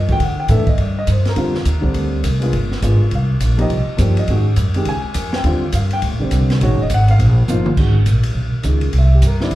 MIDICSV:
0, 0, Header, 1, 5, 480
1, 0, Start_track
1, 0, Tempo, 291404
1, 1285, Time_signature, 4, 2, 24, 8
1, 15731, End_track
2, 0, Start_track
2, 0, Title_t, "Grand piano"
2, 0, Program_c, 0, 0
2, 123, Note_on_c, 0, 52, 57
2, 141, Note_on_c, 0, 57, 53
2, 148, Note_on_c, 0, 62, 50
2, 162, Note_on_c, 0, 66, 64
2, 202, Note_on_c, 0, 79, 105
2, 297, Note_off_c, 0, 52, 0
2, 306, Note_off_c, 0, 57, 0
2, 309, Note_off_c, 0, 62, 0
2, 316, Note_off_c, 0, 66, 0
2, 350, Note_off_c, 0, 79, 0
2, 388, Note_on_c, 0, 78, 67
2, 645, Note_off_c, 0, 78, 0
2, 654, Note_on_c, 0, 79, 90
2, 802, Note_on_c, 0, 52, 72
2, 805, Note_on_c, 0, 57, 65
2, 816, Note_off_c, 0, 79, 0
2, 828, Note_on_c, 0, 62, 64
2, 834, Note_on_c, 0, 69, 81
2, 837, Note_on_c, 0, 76, 79
2, 1071, Note_off_c, 0, 52, 0
2, 1072, Note_off_c, 0, 57, 0
2, 1084, Note_off_c, 0, 62, 0
2, 1087, Note_off_c, 0, 69, 0
2, 1110, Note_off_c, 0, 76, 0
2, 1133, Note_on_c, 0, 75, 76
2, 1296, Note_off_c, 0, 75, 0
2, 1334, Note_on_c, 0, 74, 67
2, 1599, Note_off_c, 0, 74, 0
2, 1625, Note_on_c, 0, 75, 92
2, 1782, Note_off_c, 0, 75, 0
2, 1824, Note_on_c, 0, 72, 69
2, 2084, Note_off_c, 0, 72, 0
2, 2122, Note_on_c, 0, 70, 82
2, 2234, Note_on_c, 0, 50, 80
2, 2246, Note_on_c, 0, 55, 72
2, 2254, Note_on_c, 0, 60, 72
2, 2266, Note_on_c, 0, 65, 84
2, 2508, Note_off_c, 0, 50, 0
2, 2514, Note_off_c, 0, 55, 0
2, 2518, Note_off_c, 0, 60, 0
2, 2524, Note_off_c, 0, 65, 0
2, 2977, Note_on_c, 0, 50, 82
2, 3001, Note_on_c, 0, 55, 75
2, 3007, Note_on_c, 0, 60, 67
2, 3015, Note_on_c, 0, 62, 86
2, 3172, Note_off_c, 0, 70, 0
2, 3629, Note_off_c, 0, 50, 0
2, 3641, Note_off_c, 0, 55, 0
2, 3644, Note_off_c, 0, 60, 0
2, 3648, Note_off_c, 0, 62, 0
2, 3950, Note_on_c, 0, 56, 66
2, 3960, Note_on_c, 0, 59, 60
2, 3977, Note_on_c, 0, 62, 57
2, 3991, Note_on_c, 0, 65, 66
2, 4133, Note_off_c, 0, 56, 0
2, 4139, Note_off_c, 0, 59, 0
2, 4147, Note_off_c, 0, 62, 0
2, 4154, Note_off_c, 0, 65, 0
2, 4645, Note_on_c, 0, 56, 68
2, 4653, Note_on_c, 0, 59, 64
2, 4657, Note_on_c, 0, 62, 58
2, 4674, Note_on_c, 0, 65, 74
2, 4915, Note_off_c, 0, 56, 0
2, 4919, Note_off_c, 0, 59, 0
2, 4921, Note_off_c, 0, 62, 0
2, 4930, Note_off_c, 0, 65, 0
2, 5192, Note_on_c, 0, 77, 76
2, 5886, Note_off_c, 0, 77, 0
2, 5890, Note_on_c, 0, 53, 68
2, 5895, Note_on_c, 0, 58, 66
2, 5904, Note_on_c, 0, 63, 69
2, 5921, Note_on_c, 0, 67, 80
2, 5950, Note_on_c, 0, 75, 90
2, 6064, Note_off_c, 0, 53, 0
2, 6067, Note_off_c, 0, 58, 0
2, 6071, Note_off_c, 0, 63, 0
2, 6080, Note_off_c, 0, 67, 0
2, 6540, Note_on_c, 0, 53, 76
2, 6548, Note_off_c, 0, 75, 0
2, 6556, Note_on_c, 0, 58, 63
2, 6571, Note_on_c, 0, 63, 61
2, 6585, Note_on_c, 0, 67, 76
2, 6622, Note_on_c, 0, 74, 72
2, 6823, Note_off_c, 0, 53, 0
2, 6831, Note_off_c, 0, 58, 0
2, 6839, Note_off_c, 0, 63, 0
2, 6846, Note_off_c, 0, 67, 0
2, 6885, Note_off_c, 0, 74, 0
2, 6905, Note_on_c, 0, 75, 84
2, 7057, Note_on_c, 0, 51, 63
2, 7065, Note_off_c, 0, 75, 0
2, 7074, Note_on_c, 0, 56, 53
2, 7079, Note_on_c, 0, 61, 54
2, 7087, Note_on_c, 0, 66, 68
2, 7321, Note_off_c, 0, 51, 0
2, 7330, Note_off_c, 0, 56, 0
2, 7333, Note_off_c, 0, 61, 0
2, 7337, Note_off_c, 0, 66, 0
2, 7819, Note_on_c, 0, 51, 69
2, 7834, Note_on_c, 0, 56, 70
2, 7838, Note_on_c, 0, 61, 59
2, 7851, Note_on_c, 0, 67, 79
2, 7988, Note_off_c, 0, 51, 0
2, 7996, Note_off_c, 0, 56, 0
2, 7998, Note_off_c, 0, 61, 0
2, 8004, Note_off_c, 0, 67, 0
2, 8052, Note_on_c, 0, 80, 99
2, 8755, Note_off_c, 0, 80, 0
2, 8824, Note_on_c, 0, 79, 85
2, 8963, Note_on_c, 0, 55, 60
2, 8965, Note_on_c, 0, 50, 77
2, 8979, Note_on_c, 0, 60, 65
2, 8988, Note_on_c, 0, 65, 83
2, 9234, Note_off_c, 0, 55, 0
2, 9235, Note_off_c, 0, 50, 0
2, 9242, Note_off_c, 0, 60, 0
2, 9247, Note_off_c, 0, 65, 0
2, 9423, Note_off_c, 0, 79, 0
2, 9471, Note_on_c, 0, 77, 82
2, 9749, Note_off_c, 0, 77, 0
2, 9771, Note_on_c, 0, 79, 107
2, 9874, Note_off_c, 0, 79, 0
2, 10204, Note_on_c, 0, 50, 70
2, 10218, Note_on_c, 0, 55, 69
2, 10230, Note_on_c, 0, 60, 65
2, 10239, Note_on_c, 0, 67, 73
2, 10841, Note_off_c, 0, 50, 0
2, 10848, Note_off_c, 0, 55, 0
2, 10854, Note_off_c, 0, 60, 0
2, 10859, Note_off_c, 0, 67, 0
2, 10892, Note_on_c, 0, 51, 82
2, 10898, Note_on_c, 0, 56, 73
2, 10906, Note_on_c, 0, 61, 69
2, 10922, Note_on_c, 0, 66, 86
2, 10937, Note_on_c, 0, 73, 80
2, 11157, Note_off_c, 0, 51, 0
2, 11160, Note_off_c, 0, 56, 0
2, 11164, Note_off_c, 0, 61, 0
2, 11172, Note_off_c, 0, 66, 0
2, 11201, Note_off_c, 0, 73, 0
2, 11235, Note_on_c, 0, 75, 85
2, 11388, Note_off_c, 0, 75, 0
2, 11435, Note_on_c, 0, 78, 104
2, 11690, Note_off_c, 0, 78, 0
2, 11706, Note_on_c, 0, 77, 102
2, 12323, Note_on_c, 0, 53, 79
2, 12330, Note_on_c, 0, 58, 70
2, 12341, Note_on_c, 0, 63, 72
2, 12355, Note_on_c, 0, 65, 91
2, 12592, Note_off_c, 0, 53, 0
2, 12596, Note_off_c, 0, 58, 0
2, 12601, Note_off_c, 0, 63, 0
2, 12608, Note_off_c, 0, 65, 0
2, 12762, Note_off_c, 0, 77, 0
2, 12809, Note_on_c, 0, 51, 58
2, 12817, Note_on_c, 0, 56, 61
2, 12836, Note_on_c, 0, 61, 56
2, 12846, Note_on_c, 0, 66, 66
2, 13075, Note_off_c, 0, 51, 0
2, 13079, Note_off_c, 0, 56, 0
2, 13089, Note_off_c, 0, 61, 0
2, 13094, Note_off_c, 0, 66, 0
2, 14215, Note_on_c, 0, 51, 64
2, 14227, Note_on_c, 0, 56, 57
2, 14240, Note_on_c, 0, 61, 56
2, 14255, Note_on_c, 0, 68, 67
2, 14498, Note_off_c, 0, 51, 0
2, 14504, Note_off_c, 0, 56, 0
2, 14510, Note_off_c, 0, 61, 0
2, 14518, Note_off_c, 0, 68, 0
2, 14799, Note_on_c, 0, 76, 74
2, 15052, Note_off_c, 0, 76, 0
2, 15069, Note_on_c, 0, 67, 65
2, 15225, Note_off_c, 0, 67, 0
2, 15268, Note_on_c, 0, 70, 67
2, 15495, Note_on_c, 0, 50, 62
2, 15499, Note_on_c, 0, 55, 62
2, 15514, Note_on_c, 0, 60, 61
2, 15520, Note_on_c, 0, 64, 72
2, 15526, Note_off_c, 0, 70, 0
2, 15544, Note_on_c, 0, 74, 91
2, 15664, Note_off_c, 0, 50, 0
2, 15666, Note_off_c, 0, 55, 0
2, 15674, Note_off_c, 0, 60, 0
2, 15676, Note_off_c, 0, 64, 0
2, 15702, Note_off_c, 0, 74, 0
2, 15731, End_track
3, 0, Start_track
3, 0, Title_t, "Upright bass"
3, 0, Program_c, 1, 32
3, 0, Note_on_c, 1, 43, 88
3, 310, Note_off_c, 1, 43, 0
3, 330, Note_on_c, 1, 50, 83
3, 793, Note_off_c, 1, 50, 0
3, 805, Note_on_c, 1, 45, 98
3, 1081, Note_off_c, 1, 45, 0
3, 1285, Note_on_c, 1, 43, 85
3, 1752, Note_off_c, 1, 43, 0
3, 1772, Note_on_c, 1, 43, 82
3, 2236, Note_off_c, 1, 43, 0
3, 2247, Note_on_c, 1, 41, 89
3, 2713, Note_off_c, 1, 41, 0
3, 2724, Note_on_c, 1, 39, 95
3, 3192, Note_off_c, 1, 39, 0
3, 3204, Note_on_c, 1, 38, 89
3, 3673, Note_off_c, 1, 38, 0
3, 3682, Note_on_c, 1, 36, 91
3, 4152, Note_off_c, 1, 36, 0
3, 4171, Note_on_c, 1, 31, 82
3, 4637, Note_off_c, 1, 31, 0
3, 4653, Note_on_c, 1, 32, 89
3, 4928, Note_off_c, 1, 32, 0
3, 5132, Note_on_c, 1, 36, 89
3, 5598, Note_off_c, 1, 36, 0
3, 5614, Note_on_c, 1, 34, 82
3, 6078, Note_off_c, 1, 34, 0
3, 6093, Note_on_c, 1, 36, 85
3, 6369, Note_off_c, 1, 36, 0
3, 6568, Note_on_c, 1, 43, 94
3, 7036, Note_off_c, 1, 43, 0
3, 7051, Note_on_c, 1, 44, 93
3, 7517, Note_off_c, 1, 44, 0
3, 7524, Note_on_c, 1, 42, 87
3, 7804, Note_off_c, 1, 42, 0
3, 8001, Note_on_c, 1, 37, 85
3, 8282, Note_off_c, 1, 37, 0
3, 8483, Note_on_c, 1, 41, 94
3, 8948, Note_off_c, 1, 41, 0
3, 8958, Note_on_c, 1, 39, 85
3, 9429, Note_off_c, 1, 39, 0
3, 9442, Note_on_c, 1, 43, 86
3, 9911, Note_off_c, 1, 43, 0
3, 9921, Note_on_c, 1, 38, 91
3, 10073, Note_on_c, 1, 34, 64
3, 10098, Note_off_c, 1, 38, 0
3, 10220, Note_off_c, 1, 34, 0
3, 10230, Note_on_c, 1, 31, 65
3, 10388, Note_off_c, 1, 31, 0
3, 10398, Note_on_c, 1, 36, 102
3, 10869, Note_off_c, 1, 36, 0
3, 10891, Note_on_c, 1, 34, 91
3, 11038, Note_off_c, 1, 34, 0
3, 11038, Note_on_c, 1, 32, 56
3, 11203, Note_off_c, 1, 32, 0
3, 11216, Note_on_c, 1, 28, 72
3, 11356, Note_off_c, 1, 28, 0
3, 11366, Note_on_c, 1, 32, 100
3, 11832, Note_off_c, 1, 32, 0
3, 11842, Note_on_c, 1, 34, 100
3, 12310, Note_off_c, 1, 34, 0
3, 12322, Note_on_c, 1, 31, 96
3, 12790, Note_off_c, 1, 31, 0
3, 12802, Note_on_c, 1, 32, 86
3, 13270, Note_off_c, 1, 32, 0
3, 13282, Note_on_c, 1, 34, 85
3, 13739, Note_off_c, 1, 34, 0
3, 13749, Note_on_c, 1, 35, 83
3, 14033, Note_off_c, 1, 35, 0
3, 14239, Note_on_c, 1, 37, 98
3, 14702, Note_off_c, 1, 37, 0
3, 14712, Note_on_c, 1, 36, 84
3, 15181, Note_off_c, 1, 36, 0
3, 15191, Note_on_c, 1, 43, 85
3, 15664, Note_off_c, 1, 43, 0
3, 15679, Note_on_c, 1, 40, 81
3, 15731, Note_off_c, 1, 40, 0
3, 15731, End_track
4, 0, Start_track
4, 0, Title_t, "Muted upright bass strokes"
4, 1097, Note_on_c, 9, 29, 42
4, 1262, Note_off_c, 9, 29, 0
4, 4952, Note_on_c, 9, 29, 43
4, 5117, Note_off_c, 9, 29, 0
4, 6383, Note_on_c, 9, 29, 32
4, 6548, Note_off_c, 9, 29, 0
4, 7821, Note_on_c, 9, 29, 39
4, 7986, Note_off_c, 9, 29, 0
4, 8294, Note_on_c, 9, 29, 39
4, 8459, Note_off_c, 9, 29, 0
4, 14064, Note_on_c, 9, 29, 36
4, 14229, Note_off_c, 9, 29, 0
4, 15731, End_track
5, 0, Start_track
5, 0, Title_t, "Drums"
5, 140, Note_on_c, 9, 51, 46
5, 145, Note_on_c, 9, 36, 58
5, 305, Note_off_c, 9, 51, 0
5, 310, Note_off_c, 9, 36, 0
5, 328, Note_on_c, 9, 51, 64
5, 330, Note_on_c, 9, 36, 23
5, 493, Note_off_c, 9, 51, 0
5, 494, Note_off_c, 9, 36, 0
5, 796, Note_on_c, 9, 44, 58
5, 796, Note_on_c, 9, 51, 63
5, 808, Note_on_c, 9, 36, 18
5, 961, Note_off_c, 9, 44, 0
5, 961, Note_off_c, 9, 51, 0
5, 973, Note_off_c, 9, 36, 0
5, 1098, Note_on_c, 9, 51, 43
5, 1104, Note_on_c, 9, 36, 67
5, 1263, Note_off_c, 9, 51, 0
5, 1269, Note_off_c, 9, 36, 0
5, 1281, Note_on_c, 9, 51, 57
5, 1288, Note_on_c, 9, 36, 24
5, 1445, Note_off_c, 9, 51, 0
5, 1453, Note_off_c, 9, 36, 0
5, 1763, Note_on_c, 9, 44, 54
5, 1763, Note_on_c, 9, 51, 70
5, 1769, Note_on_c, 9, 36, 24
5, 1928, Note_off_c, 9, 44, 0
5, 1928, Note_off_c, 9, 51, 0
5, 1934, Note_off_c, 9, 36, 0
5, 2063, Note_on_c, 9, 51, 46
5, 2070, Note_on_c, 9, 38, 45
5, 2228, Note_off_c, 9, 51, 0
5, 2235, Note_off_c, 9, 38, 0
5, 2241, Note_on_c, 9, 51, 64
5, 2247, Note_on_c, 9, 36, 18
5, 2406, Note_off_c, 9, 51, 0
5, 2411, Note_off_c, 9, 36, 0
5, 2544, Note_on_c, 9, 38, 40
5, 2709, Note_off_c, 9, 38, 0
5, 2722, Note_on_c, 9, 44, 49
5, 2722, Note_on_c, 9, 51, 62
5, 2729, Note_on_c, 9, 36, 26
5, 2887, Note_off_c, 9, 44, 0
5, 2887, Note_off_c, 9, 51, 0
5, 2894, Note_off_c, 9, 36, 0
5, 3024, Note_on_c, 9, 36, 52
5, 3189, Note_off_c, 9, 36, 0
5, 3200, Note_on_c, 9, 51, 60
5, 3206, Note_on_c, 9, 36, 18
5, 3365, Note_off_c, 9, 51, 0
5, 3371, Note_off_c, 9, 36, 0
5, 3684, Note_on_c, 9, 44, 49
5, 3684, Note_on_c, 9, 51, 72
5, 3689, Note_on_c, 9, 36, 18
5, 3849, Note_off_c, 9, 44, 0
5, 3849, Note_off_c, 9, 51, 0
5, 3853, Note_off_c, 9, 36, 0
5, 3982, Note_on_c, 9, 51, 50
5, 4146, Note_off_c, 9, 51, 0
5, 4165, Note_on_c, 9, 51, 56
5, 4169, Note_on_c, 9, 36, 21
5, 4330, Note_off_c, 9, 51, 0
5, 4334, Note_off_c, 9, 36, 0
5, 4474, Note_on_c, 9, 38, 39
5, 4639, Note_off_c, 9, 38, 0
5, 4650, Note_on_c, 9, 44, 62
5, 4650, Note_on_c, 9, 51, 64
5, 4652, Note_on_c, 9, 36, 23
5, 4815, Note_off_c, 9, 44, 0
5, 4815, Note_off_c, 9, 51, 0
5, 4816, Note_off_c, 9, 36, 0
5, 5125, Note_on_c, 9, 51, 54
5, 5132, Note_on_c, 9, 36, 20
5, 5290, Note_off_c, 9, 51, 0
5, 5296, Note_off_c, 9, 36, 0
5, 5607, Note_on_c, 9, 44, 48
5, 5607, Note_on_c, 9, 51, 71
5, 5612, Note_on_c, 9, 36, 19
5, 5772, Note_off_c, 9, 44, 0
5, 5772, Note_off_c, 9, 51, 0
5, 5776, Note_off_c, 9, 36, 0
5, 5907, Note_on_c, 9, 51, 46
5, 6071, Note_off_c, 9, 51, 0
5, 6092, Note_on_c, 9, 36, 25
5, 6092, Note_on_c, 9, 51, 60
5, 6256, Note_off_c, 9, 36, 0
5, 6257, Note_off_c, 9, 51, 0
5, 6562, Note_on_c, 9, 44, 56
5, 6562, Note_on_c, 9, 51, 68
5, 6567, Note_on_c, 9, 36, 19
5, 6727, Note_off_c, 9, 44, 0
5, 6727, Note_off_c, 9, 51, 0
5, 6732, Note_off_c, 9, 36, 0
5, 6866, Note_on_c, 9, 51, 52
5, 7031, Note_off_c, 9, 51, 0
5, 7044, Note_on_c, 9, 51, 60
5, 7049, Note_on_c, 9, 36, 22
5, 7208, Note_off_c, 9, 51, 0
5, 7214, Note_off_c, 9, 36, 0
5, 7515, Note_on_c, 9, 44, 50
5, 7515, Note_on_c, 9, 51, 69
5, 7524, Note_on_c, 9, 36, 21
5, 7680, Note_off_c, 9, 44, 0
5, 7680, Note_off_c, 9, 51, 0
5, 7688, Note_off_c, 9, 36, 0
5, 7811, Note_on_c, 9, 51, 50
5, 7976, Note_off_c, 9, 51, 0
5, 7993, Note_on_c, 9, 51, 62
5, 8002, Note_on_c, 9, 36, 22
5, 8158, Note_off_c, 9, 51, 0
5, 8167, Note_off_c, 9, 36, 0
5, 8470, Note_on_c, 9, 44, 54
5, 8470, Note_on_c, 9, 51, 75
5, 8482, Note_on_c, 9, 36, 23
5, 8635, Note_off_c, 9, 44, 0
5, 8635, Note_off_c, 9, 51, 0
5, 8647, Note_off_c, 9, 36, 0
5, 8776, Note_on_c, 9, 38, 66
5, 8941, Note_off_c, 9, 38, 0
5, 8956, Note_on_c, 9, 51, 59
5, 8959, Note_on_c, 9, 36, 21
5, 9121, Note_off_c, 9, 51, 0
5, 9124, Note_off_c, 9, 36, 0
5, 9429, Note_on_c, 9, 44, 58
5, 9429, Note_on_c, 9, 51, 74
5, 9440, Note_on_c, 9, 36, 24
5, 9593, Note_off_c, 9, 44, 0
5, 9593, Note_off_c, 9, 51, 0
5, 9605, Note_off_c, 9, 36, 0
5, 9728, Note_on_c, 9, 51, 47
5, 9893, Note_off_c, 9, 51, 0
5, 9914, Note_on_c, 9, 51, 61
5, 9920, Note_on_c, 9, 36, 19
5, 10078, Note_off_c, 9, 51, 0
5, 10084, Note_off_c, 9, 36, 0
5, 10393, Note_on_c, 9, 44, 52
5, 10393, Note_on_c, 9, 51, 72
5, 10402, Note_on_c, 9, 36, 19
5, 10558, Note_off_c, 9, 44, 0
5, 10558, Note_off_c, 9, 51, 0
5, 10567, Note_off_c, 9, 36, 0
5, 10704, Note_on_c, 9, 51, 50
5, 10711, Note_on_c, 9, 38, 49
5, 10869, Note_off_c, 9, 51, 0
5, 10876, Note_off_c, 9, 38, 0
5, 10887, Note_on_c, 9, 36, 18
5, 10889, Note_on_c, 9, 51, 63
5, 11052, Note_off_c, 9, 36, 0
5, 11054, Note_off_c, 9, 51, 0
5, 11360, Note_on_c, 9, 44, 50
5, 11360, Note_on_c, 9, 51, 75
5, 11365, Note_on_c, 9, 36, 20
5, 11525, Note_off_c, 9, 44, 0
5, 11525, Note_off_c, 9, 51, 0
5, 11530, Note_off_c, 9, 36, 0
5, 11666, Note_on_c, 9, 51, 52
5, 11830, Note_off_c, 9, 51, 0
5, 11848, Note_on_c, 9, 36, 24
5, 11852, Note_on_c, 9, 51, 61
5, 12013, Note_off_c, 9, 36, 0
5, 12016, Note_off_c, 9, 51, 0
5, 12322, Note_on_c, 9, 44, 58
5, 12487, Note_off_c, 9, 44, 0
5, 12614, Note_on_c, 9, 47, 70
5, 12779, Note_off_c, 9, 47, 0
5, 12801, Note_on_c, 9, 36, 68
5, 12802, Note_on_c, 9, 49, 75
5, 12965, Note_off_c, 9, 36, 0
5, 12966, Note_off_c, 9, 49, 0
5, 13273, Note_on_c, 9, 44, 51
5, 13273, Note_on_c, 9, 51, 64
5, 13279, Note_on_c, 9, 36, 24
5, 13438, Note_off_c, 9, 44, 0
5, 13438, Note_off_c, 9, 51, 0
5, 13444, Note_off_c, 9, 36, 0
5, 13562, Note_on_c, 9, 51, 65
5, 13726, Note_off_c, 9, 51, 0
5, 13754, Note_on_c, 9, 36, 25
5, 13918, Note_off_c, 9, 36, 0
5, 14221, Note_on_c, 9, 44, 54
5, 14221, Note_on_c, 9, 51, 58
5, 14235, Note_on_c, 9, 36, 18
5, 14386, Note_off_c, 9, 44, 0
5, 14386, Note_off_c, 9, 51, 0
5, 14400, Note_off_c, 9, 36, 0
5, 14514, Note_on_c, 9, 51, 49
5, 14679, Note_off_c, 9, 51, 0
5, 14706, Note_on_c, 9, 51, 61
5, 14714, Note_on_c, 9, 36, 21
5, 14870, Note_off_c, 9, 51, 0
5, 14878, Note_off_c, 9, 36, 0
5, 15184, Note_on_c, 9, 44, 57
5, 15184, Note_on_c, 9, 51, 62
5, 15195, Note_on_c, 9, 36, 17
5, 15349, Note_off_c, 9, 44, 0
5, 15349, Note_off_c, 9, 51, 0
5, 15360, Note_off_c, 9, 36, 0
5, 15491, Note_on_c, 9, 38, 45
5, 15656, Note_off_c, 9, 38, 0
5, 15663, Note_on_c, 9, 51, 62
5, 15676, Note_on_c, 9, 36, 20
5, 15731, Note_off_c, 9, 36, 0
5, 15731, Note_off_c, 9, 51, 0
5, 15731, End_track
0, 0, End_of_file